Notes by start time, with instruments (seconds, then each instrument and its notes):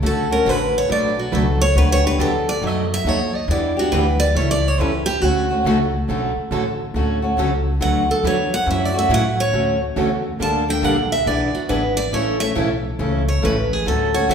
0.03 upright bass D2, steel-string acoustic guitar D3 F#3 A3 C#4 F#4 A4
0.31 steel-string acoustic guitar A3 C#4 F#4 A#4
0.45 upright bass A1, steel-string acoustic guitar D3 F#3 A3 C#4 F#4 A4 B4
0.78 steel-string acoustic guitar C#5
0.88 upright bass B1, steel-string acoustic guitar B2 F#3 A3 D4 F#4 B4
0.92 steel-string acoustic guitar D5
1.19 steel-string acoustic guitar F#4
1.32 upright bass C#2, steel-string acoustic guitar B2 F#3 A3 D4 F#4 A4 B4
1.61 steel-string acoustic guitar C#5
1.75 upright bass D2, steel-string acoustic guitar D3 F#3 B3 D4 G4 B4
1.92 steel-string acoustic guitar C#5
2.04 steel-string acoustic guitar B3 D4 G4 B4
2.18 upright bass E2, steel-string acoustic guitar D3 F#3 B3 D4 G4 A4
2.49 steel-string acoustic guitar D5
2.62 upright bass F#2, steel-string acoustic guitar B2 F#3 A3 B3 D#4 F#4 A4
2.67 steel-string acoustic guitar D#5
2.94 steel-string acoustic guitar E5
3.05 upright bass D#2, steel-string acoustic guitar B2 F#3 A3 B3 D#4 F#4 A4 C#5
3.35 steel-string acoustic guitar D#5
3.48 upright bass E2, steel-string acoustic guitar E3 G3 B3 D4 E4 G4 B4 D5
3.77 steel-string acoustic guitar B3 D4 F#4 G4
3.92 upright bass D2, steel-string acoustic guitar E3 G3 B3 D4 E4 G4 B4
4.20 steel-string acoustic guitar D5
4.35 upright bass C#2, steel-string acoustic guitar E3 G3 C#4 E4 A4 C#5
4.51 steel-string acoustic guitar D5
4.68 steel-string acoustic guitar C#5
4.79 upright bass E2, steel-string acoustic guitar E3 G3 C#4 E4 A4 B4
5.06 steel-string acoustic guitar G4
5.21 upright bass D2, steel-string acoustic guitar D3 F#3 A3 C#4 F#4 A4
5.51 steel-string acoustic guitar A3 C#4 F#4
5.64 upright bass C#2, steel-string acoustic guitar D3 F#3 A3 C#4 F#4 A4
6.09 upright bass B1, steel-string acoustic guitar D3 F#3 A3 C#4 F#4 A4
6.36 muted upright bass stroke
6.51 upright bass A1, steel-string acoustic guitar D3 F#3 A3 C#4 F#4 A4
6.94 upright bass D2, steel-string acoustic guitar D3 F#3 A3 C#4 F#4 A4
7.22 steel-string acoustic guitar A3 C#4 F#4
7.37 upright bass C#2, steel-string acoustic guitar D3 F#3 A3 C#4 F#4 A4
7.81 upright bass D2, steel-string acoustic guitar D3 F#3 A3 D4 F#4 B4 F#5
8.11 steel-string acoustic guitar A4
8.23 upright bass E2, steel-string acoustic guitar D3 F#3 A3 D4 F#4 B4 C#5
8.54 steel-string acoustic guitar F#5
8.65 upright bass F#2, steel-string acoustic guitar C#3 E3 F#3 A3 C#4 E4 F#4 A4
8.71 steel-string acoustic guitar E5
8.85 steel-string acoustic guitar D5
8.94 steel-string acoustic guitar A3 C#4 F#4
8.99 steel-string acoustic guitar E5
9.09 upright bass A2, steel-string acoustic guitar C#3 E3 F#3 A3 C#4 E4 F#4 A4
9.14 steel-string acoustic guitar F#5
9.40 steel-string acoustic guitar C#5
9.53 upright bass D2, steel-string acoustic guitar D3 F#3 A3 C#4 F#4 A4
9.96 upright bass E2, steel-string acoustic guitar D3 F#3 A3 C#4 F#4 A4
10.40 upright bass D2, steel-string acoustic guitar D3 G3 A#3 D4 A4 A5
10.69 steel-string acoustic guitar A#3 D4 A4 G5
10.82 upright bass A#1, steel-string acoustic guitar D3 G3 A#3 D4 A4 F#5
11.12 steel-string acoustic guitar E5
11.26 upright bass B1, steel-string acoustic guitar E3 B3 D4 G#4 B4 D5
11.54 steel-string acoustic guitar F#4, muted upright bass stroke
11.69 upright bass G#1, steel-string acoustic guitar E3 B3 D4 G#4 B4
11.97 steel-string acoustic guitar D5
12.12 upright bass A1, steel-string acoustic guitar C#3 E3 A3 C#4 E4 A4 C#5
12.40 steel-string acoustic guitar A3 C#4 A4 E5
12.55 upright bass B1, steel-string acoustic guitar C#3 E3 A3 C#4 E4 A4
12.99 upright bass C#2, steel-string acoustic guitar C#3 E3 A3 C#4 E4 A4
13.28 steel-string acoustic guitar C#5
13.42 upright bass A1, steel-string acoustic guitar C#3 E3 A3 C#4 E4 A4 B4
13.73 steel-string acoustic guitar G#4
13.86 upright bass D2, steel-string acoustic guitar D3 F#3 A3 C#4 F#4 A4
14.14 steel-string acoustic guitar A3 C#4 F#4 C#5
14.29 upright bass C#2, steel-string acoustic guitar D3 F#3 A3 C#4 F#4 A4 E5